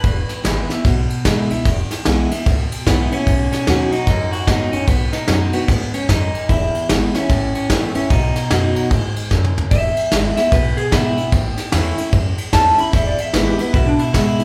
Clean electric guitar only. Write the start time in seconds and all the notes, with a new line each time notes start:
Already playing: B4
2.87 B3
3.12 C#4
3.52 C#4
3.92 D#4
4.32 F#4
4.47 D#4
4.72 C#4
4.88 B3
5.13 D#4
5.28 C#4
5.54 B3
5.94 C#4
6.09 D#4
6.50 E4
7.15 C#4
7.55 C#4
7.70 B3
7.95 C#4
8.10 D#4
9.71 E5
10.36 E5
10.52 B4
10.77 G#4
10.92 E4
12.53 A5
12.80 B5
12.93 E5
13.07 D5
13.20 E5
13.33 B4
13.47 G4
13.60 B4
13.73 E4
13.87 D4
14.00 E4
14.13 E4